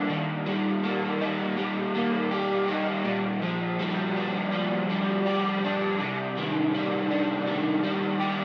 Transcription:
overdriven electric guitar
Already playing: G3 A#3 A4
0.09 D#3
0.46 G3
0.83 A#3
1.21 D#4
1.58 G3
1.94 A#3
2.31 G4
2.68 D#4
3.04 A#2
3.42 F3
3.79 G3
4.16 D4
4.52 F3
4.89 G3
5.26 G4
5.64 D4
6.00 C3
6.37 D#3
6.74 G3
7.11 D4
7.47 D#3
7.84 G3
8.20 G4

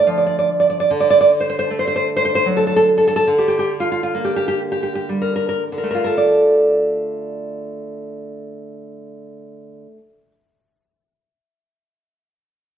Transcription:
nylon-string guitar
Already playing: D3 A3
0.07 F3
0.18 D5
0.26 D5
0.39 D5
0.60 D5
0.70 D5
0.80 D5
0.91 D3
1.00 D5
1.10 D5
1.21 D5
1.40 C5
1.50 C5
1.59 C5
1.70 A3
1.79 C5
1.87 C5
1.96 C5
2.17 C5
2.25 C5
2.35 C5
2.46 F#3
2.57 A4
2.67 A4
2.76 A4
2.98 A4
3.08 A4
3.16 A4
3.27 D3
3.38 G4
3.48 G4
3.59 G4
3.80 F4
3.92 F4
4.03 F4
4.15 A#3
4.25 G4
4.36 G4
4.48 G4
4.72 G4
4.83 G4
4.95 G4
5.09 G3
5.22 A#4
5.36 A#4
5.49 A#4
5.72 D3
5.78 A#4
5.83 A3
5.91 A#4
5.95 F4
6.04 A4 A#4
6.18 D5

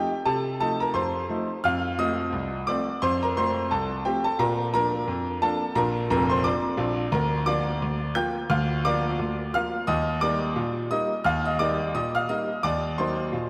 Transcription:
grand piano
Already playing: F3 A3 D#4 G4 G5
0.26 C3 A4 A5
0.60 F3 A3 D#4 A4 A5
0.80 A#4 A#5
0.94 F2 C5 C6
1.29 F3 A3 D#4
1.64 F2 F5 F6
1.99 F3 A3 C4 D#5 D#6
2.32 C2
2.67 F3 A3 C4 D5 D6
3.02 F2 C5 C6
3.23 A#4 A#5
3.37 F3 A3 C4 C5 C6
3.71 C2 A4 A5
4.05 F3 A3 C4 G4 G5
4.24 A4 A5
4.39 A#2 A#4 A#5
4.74 F3 A#3 D4 A#4 A#5
5.08 F2
5.42 F3 A#3 D4 A4 A5
5.75 A#1 A#2 A#4 A#5
6.10 F1 F2 A#4 A#5
6.30 C5 C6
6.44 F3 A#3 D4 D5 D6
6.77 A#1 A#2
7.12 D2 A#4 A#5
7.46 F3 A#3 F4 D5 D6
7.82 D2
8.15 F3 A#3 F4 G5 G6
8.50 D2 F5 F6
8.85 F3 A#3 F4 D5 D6
9.20 D2
9.54 F3 A#3 F4 F5 F6
9.87 D#2 D#5 D#6
10.21 G3 A#3 D#4 D5 D6
10.56 A#2
10.91 G3 A#3 D#4 D#5 D#6
11.24 D#2 F5 F6
11.45 D#5 D#6
11.59 G3 A#3 D#4 D5 D6
11.94 A#2 D#5 D#6
12.15 F5 F6
12.29 G3 A#3 D#4 D#5 D#6
12.63 D#2 D5 D6
12.98 F#3 A#3 D#4 C5 C6
13.33 A#2

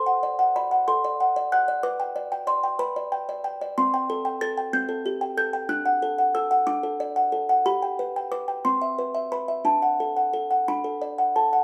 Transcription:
music box
Already playing: A4 C6
0.06 F#5
0.23 D5
0.39 F#5
0.56 D5 B5
0.71 F#5
0.88 A4 C6
1.05 D5
1.20 F#5
1.36 D5
1.52 F#5 F#6
1.68 D5
1.83 B4 D6
2.00 G5
2.16 D5
2.32 G5
2.47 D5 C6
2.64 G5
2.79 B4 B5
2.96 D5
3.12 G5
3.29 D5
3.44 G5
3.61 D5
3.78 C4 C6
3.94 G5
4.10 A4
4.25 G5
4.41 A4 A6
4.57 G5
4.73 C4 G6
4.89 A4
5.06 G4
5.21 G5
5.37 A4 G6
5.53 G5
5.69 D4 F#6
5.86 F#5
6.02 A4
6.18 F#5
6.35 A4 E6
6.51 F#5
6.67 D4 D6
6.83 A4
7.00 D5
7.16 F#5
7.32 A4
7.49 F#5
7.66 G4 B5
7.82 G5
7.99 B4
8.16 G5
8.32 B4 D6
8.48 G5
8.65 C4 C6
8.82 E5
8.99 B4
9.15 E5
9.32 B4 B5
9.48 E5
9.65 D4 A5
9.82 F#5
10.00 A4
10.17 F#5
10.33 A4
10.51 F#5
10.68 D4 B5
10.84 A4
11.02 D5
11.18 F#5
11.36 A4 A5
11.53 F#5

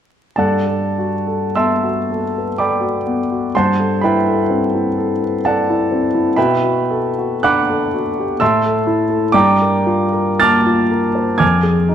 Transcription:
grand piano
0.36 G2 A4 D5 F#5 A5
0.67 A4
0.98 F#4
1.27 A4
1.56 B3 E5 A5 C6 E6
1.83 F#4
2.11 A4
2.38 B4
2.58 A4 D5 G5 B5 D6
2.80 F#4
3.07 B3
3.31 F#4
3.55 G2 C5 F#5 A5 C6
3.79 A4
4.01 E4 B4 E5 G5 B5
4.27 A4
4.50 C4
4.75 E4
4.98 A4
5.24 B4
5.45 A4 D5 F#5 A5
5.70 E4
5.91 C4
6.14 E4
6.36 B2 B4 E5 G5 B5
6.63 F#4
6.90 A4
7.18 F#4
7.43 D4 F#5 B5 D6 F#6
7.70 A4
7.94 F#4
8.20 G4
8.40 A2 E5 A5 C6 E6
8.66 A4
8.87 E4
9.10 A4
9.32 G2 D5 G5 A#5 D6
9.62 A#4
9.86 F4
10.13 A#4
10.40 A#3 A5 D6 F6 A6
10.66 F4
10.91 A#4
11.15 C5
11.38 F2 G#5 D6 F6 G#6
11.63 G#4
11.89 D#4

